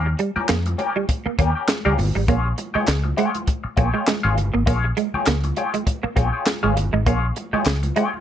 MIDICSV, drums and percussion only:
0, 0, Header, 1, 2, 480
1, 0, Start_track
1, 0, Tempo, 597610
1, 1834, Time_signature, 4, 2, 24, 8
1, 6589, End_track
2, 0, Start_track
2, 0, Title_t, "Drums"
2, 151, Note_on_c, 9, 42, 63
2, 231, Note_off_c, 9, 42, 0
2, 290, Note_on_c, 9, 63, 88
2, 370, Note_off_c, 9, 63, 0
2, 390, Note_on_c, 9, 39, 102
2, 392, Note_on_c, 9, 42, 84
2, 393, Note_off_c, 9, 39, 0
2, 393, Note_on_c, 9, 38, 106
2, 393, Note_on_c, 9, 39, 97
2, 473, Note_off_c, 9, 42, 0
2, 474, Note_off_c, 9, 38, 0
2, 474, Note_off_c, 9, 39, 0
2, 527, Note_on_c, 9, 63, 78
2, 528, Note_on_c, 9, 42, 49
2, 608, Note_off_c, 9, 42, 0
2, 608, Note_off_c, 9, 63, 0
2, 629, Note_on_c, 9, 62, 39
2, 633, Note_on_c, 9, 42, 70
2, 709, Note_off_c, 9, 62, 0
2, 713, Note_off_c, 9, 42, 0
2, 770, Note_on_c, 9, 63, 55
2, 850, Note_off_c, 9, 63, 0
2, 874, Note_on_c, 9, 42, 97
2, 875, Note_on_c, 9, 36, 82
2, 880, Note_on_c, 9, 62, 39
2, 954, Note_off_c, 9, 42, 0
2, 955, Note_off_c, 9, 36, 0
2, 961, Note_off_c, 9, 62, 0
2, 1113, Note_on_c, 9, 42, 78
2, 1114, Note_on_c, 9, 36, 89
2, 1194, Note_off_c, 9, 36, 0
2, 1194, Note_off_c, 9, 42, 0
2, 1348, Note_on_c, 9, 62, 31
2, 1348, Note_on_c, 9, 63, 67
2, 1353, Note_on_c, 9, 38, 120
2, 1353, Note_on_c, 9, 39, 86
2, 1354, Note_on_c, 9, 42, 88
2, 1355, Note_off_c, 9, 39, 0
2, 1355, Note_on_c, 9, 39, 96
2, 1428, Note_off_c, 9, 62, 0
2, 1428, Note_off_c, 9, 63, 0
2, 1433, Note_off_c, 9, 38, 0
2, 1434, Note_off_c, 9, 42, 0
2, 1435, Note_off_c, 9, 39, 0
2, 1499, Note_on_c, 9, 64, 75
2, 1580, Note_off_c, 9, 64, 0
2, 1592, Note_on_c, 9, 62, 34
2, 1592, Note_on_c, 9, 63, 85
2, 1592, Note_on_c, 9, 64, 81
2, 1597, Note_on_c, 9, 46, 69
2, 1672, Note_off_c, 9, 62, 0
2, 1672, Note_off_c, 9, 63, 0
2, 1672, Note_off_c, 9, 64, 0
2, 1677, Note_off_c, 9, 46, 0
2, 1832, Note_on_c, 9, 62, 34
2, 1834, Note_on_c, 9, 36, 122
2, 1834, Note_on_c, 9, 42, 94
2, 1912, Note_off_c, 9, 62, 0
2, 1914, Note_off_c, 9, 36, 0
2, 1914, Note_off_c, 9, 42, 0
2, 2071, Note_on_c, 9, 42, 68
2, 2075, Note_on_c, 9, 62, 46
2, 2151, Note_off_c, 9, 42, 0
2, 2155, Note_off_c, 9, 62, 0
2, 2210, Note_on_c, 9, 63, 82
2, 2290, Note_off_c, 9, 63, 0
2, 2307, Note_on_c, 9, 39, 86
2, 2313, Note_on_c, 9, 42, 88
2, 2314, Note_off_c, 9, 39, 0
2, 2314, Note_on_c, 9, 38, 113
2, 2314, Note_on_c, 9, 39, 95
2, 2393, Note_off_c, 9, 42, 0
2, 2394, Note_off_c, 9, 38, 0
2, 2394, Note_off_c, 9, 39, 0
2, 2449, Note_on_c, 9, 63, 77
2, 2529, Note_off_c, 9, 63, 0
2, 2552, Note_on_c, 9, 42, 75
2, 2632, Note_off_c, 9, 42, 0
2, 2687, Note_on_c, 9, 42, 58
2, 2694, Note_on_c, 9, 63, 68
2, 2767, Note_off_c, 9, 42, 0
2, 2774, Note_off_c, 9, 63, 0
2, 2791, Note_on_c, 9, 42, 84
2, 2792, Note_on_c, 9, 36, 86
2, 2871, Note_off_c, 9, 42, 0
2, 2872, Note_off_c, 9, 36, 0
2, 3030, Note_on_c, 9, 42, 77
2, 3032, Note_on_c, 9, 36, 88
2, 3036, Note_on_c, 9, 62, 39
2, 3110, Note_off_c, 9, 42, 0
2, 3112, Note_off_c, 9, 36, 0
2, 3117, Note_off_c, 9, 62, 0
2, 3270, Note_on_c, 9, 39, 94
2, 3273, Note_off_c, 9, 39, 0
2, 3273, Note_on_c, 9, 38, 109
2, 3273, Note_on_c, 9, 39, 87
2, 3273, Note_on_c, 9, 63, 72
2, 3274, Note_on_c, 9, 42, 78
2, 3353, Note_off_c, 9, 63, 0
2, 3354, Note_off_c, 9, 38, 0
2, 3354, Note_off_c, 9, 39, 0
2, 3354, Note_off_c, 9, 42, 0
2, 3421, Note_on_c, 9, 64, 84
2, 3501, Note_off_c, 9, 64, 0
2, 3516, Note_on_c, 9, 42, 70
2, 3516, Note_on_c, 9, 62, 35
2, 3516, Note_on_c, 9, 63, 74
2, 3516, Note_on_c, 9, 64, 76
2, 3596, Note_off_c, 9, 42, 0
2, 3596, Note_off_c, 9, 62, 0
2, 3596, Note_off_c, 9, 63, 0
2, 3596, Note_off_c, 9, 64, 0
2, 3749, Note_on_c, 9, 62, 36
2, 3752, Note_on_c, 9, 36, 117
2, 3752, Note_on_c, 9, 42, 98
2, 3829, Note_off_c, 9, 62, 0
2, 3832, Note_off_c, 9, 42, 0
2, 3833, Note_off_c, 9, 36, 0
2, 3992, Note_on_c, 9, 42, 66
2, 3994, Note_on_c, 9, 62, 45
2, 4072, Note_off_c, 9, 42, 0
2, 4074, Note_off_c, 9, 62, 0
2, 4129, Note_on_c, 9, 63, 81
2, 4210, Note_off_c, 9, 63, 0
2, 4226, Note_on_c, 9, 39, 99
2, 4232, Note_on_c, 9, 42, 93
2, 4233, Note_off_c, 9, 39, 0
2, 4233, Note_on_c, 9, 38, 111
2, 4233, Note_on_c, 9, 39, 90
2, 4239, Note_on_c, 9, 62, 35
2, 4313, Note_off_c, 9, 42, 0
2, 4314, Note_off_c, 9, 38, 0
2, 4314, Note_off_c, 9, 39, 0
2, 4319, Note_off_c, 9, 62, 0
2, 4366, Note_on_c, 9, 42, 47
2, 4368, Note_on_c, 9, 63, 77
2, 4447, Note_off_c, 9, 42, 0
2, 4449, Note_off_c, 9, 63, 0
2, 4470, Note_on_c, 9, 42, 80
2, 4473, Note_on_c, 9, 62, 38
2, 4550, Note_off_c, 9, 42, 0
2, 4553, Note_off_c, 9, 62, 0
2, 4609, Note_on_c, 9, 42, 67
2, 4613, Note_on_c, 9, 63, 64
2, 4690, Note_off_c, 9, 42, 0
2, 4693, Note_off_c, 9, 63, 0
2, 4713, Note_on_c, 9, 36, 79
2, 4713, Note_on_c, 9, 42, 88
2, 4722, Note_on_c, 9, 62, 43
2, 4793, Note_off_c, 9, 36, 0
2, 4793, Note_off_c, 9, 42, 0
2, 4802, Note_off_c, 9, 62, 0
2, 4953, Note_on_c, 9, 36, 89
2, 4954, Note_on_c, 9, 42, 82
2, 4955, Note_on_c, 9, 62, 41
2, 5033, Note_off_c, 9, 36, 0
2, 5034, Note_off_c, 9, 42, 0
2, 5035, Note_off_c, 9, 62, 0
2, 5190, Note_on_c, 9, 39, 95
2, 5191, Note_on_c, 9, 62, 33
2, 5191, Note_on_c, 9, 63, 69
2, 5193, Note_off_c, 9, 39, 0
2, 5193, Note_on_c, 9, 38, 100
2, 5193, Note_on_c, 9, 39, 93
2, 5194, Note_on_c, 9, 42, 89
2, 5271, Note_off_c, 9, 62, 0
2, 5271, Note_off_c, 9, 63, 0
2, 5273, Note_off_c, 9, 38, 0
2, 5273, Note_off_c, 9, 39, 0
2, 5274, Note_off_c, 9, 42, 0
2, 5339, Note_on_c, 9, 64, 76
2, 5420, Note_off_c, 9, 64, 0
2, 5434, Note_on_c, 9, 62, 35
2, 5434, Note_on_c, 9, 63, 71
2, 5434, Note_on_c, 9, 64, 75
2, 5438, Note_on_c, 9, 42, 77
2, 5515, Note_off_c, 9, 62, 0
2, 5515, Note_off_c, 9, 63, 0
2, 5515, Note_off_c, 9, 64, 0
2, 5518, Note_off_c, 9, 42, 0
2, 5674, Note_on_c, 9, 42, 91
2, 5675, Note_on_c, 9, 36, 111
2, 5754, Note_off_c, 9, 42, 0
2, 5755, Note_off_c, 9, 36, 0
2, 5913, Note_on_c, 9, 42, 64
2, 5919, Note_on_c, 9, 62, 46
2, 5993, Note_off_c, 9, 42, 0
2, 5999, Note_off_c, 9, 62, 0
2, 6056, Note_on_c, 9, 63, 84
2, 6136, Note_off_c, 9, 63, 0
2, 6148, Note_on_c, 9, 39, 100
2, 6156, Note_on_c, 9, 42, 85
2, 6157, Note_off_c, 9, 39, 0
2, 6157, Note_on_c, 9, 38, 113
2, 6157, Note_on_c, 9, 39, 94
2, 6163, Note_on_c, 9, 62, 36
2, 6237, Note_off_c, 9, 42, 0
2, 6238, Note_off_c, 9, 38, 0
2, 6238, Note_off_c, 9, 39, 0
2, 6243, Note_off_c, 9, 62, 0
2, 6290, Note_on_c, 9, 42, 53
2, 6292, Note_on_c, 9, 63, 78
2, 6370, Note_off_c, 9, 42, 0
2, 6372, Note_off_c, 9, 63, 0
2, 6395, Note_on_c, 9, 42, 74
2, 6396, Note_on_c, 9, 62, 40
2, 6475, Note_off_c, 9, 42, 0
2, 6476, Note_off_c, 9, 62, 0
2, 6538, Note_on_c, 9, 63, 60
2, 6589, Note_off_c, 9, 63, 0
2, 6589, End_track
0, 0, End_of_file